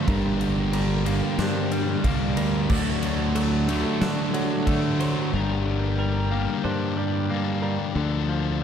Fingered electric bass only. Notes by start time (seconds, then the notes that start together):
0.08 G1
1.38 G2
2.04 C2
2.37 D2
2.70 D2
4.01 D3
5.34 G1
6.65 G2
7.96 D2